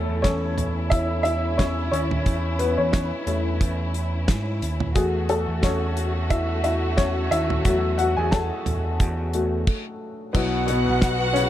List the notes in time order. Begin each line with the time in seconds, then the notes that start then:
Already playing: A3 C#4 E4 A4
0.09 E2
0.22 E2 C#4 C#5, kick, snare, closed hi-hat
0.58 closed hi-hat, floor tom
0.90 E4 E5, kick, closed hi-hat
1.23 E4 E5, closed hi-hat
1.58 C#4 C#5, kick, snare, closed hi-hat
1.92 D#2 C#4 C#5, closed hi-hat
2.11 floor tom
2.26 E2, kick, closed hi-hat
2.59 B3 B4, closed hi-hat
2.78 E2 C#4 C#5
2.92 C#4 C#5, kick, snare, closed hi-hat
3.26 E2 A3 C#4 E4, closed hi-hat
3.61 E2, kick, closed hi-hat
3.94 closed hi-hat
4.28 G#2, kick, snare, closed hi-hat
4.62 D#2, closed hi-hat
4.80 floor tom
4.95 E2 A3 F#4 G#4, kick, closed hi-hat
5.29 A3 A4, closed hi-hat
5.48 E2
5.63 E2 C#4 C#5, kick, snare, closed hi-hat
5.97 closed hi-hat
6.30 E4 E5, kick, closed hi-hat
6.64 E4 E5, closed hi-hat
6.97 C#4 C#5, kick, snare, closed hi-hat
7.31 D#2 E4 E5, closed hi-hat
7.50 floor tom
7.65 E2 F#3 A3 F#4, kick, closed hi-hat
7.98 F#4 F#5, closed hi-hat
8.17 E2 G#4 G#5
8.31 A4 A5, kick, snare, closed hi-hat
8.66 E2, closed hi-hat, floor tom
9.00 E2, kick, closed hi-hat
9.33 A3 F#4, closed hi-hat
9.67 kick, crash
10.33 B1 B2 F#3 B3 E4 F#4 B4 F#5, kick, crash
10.67 B2 B3, closed hi-hat
10.87 B1
11.02 B1, kick, snare, closed hi-hat
11.33 C#3 C#4, closed hi-hat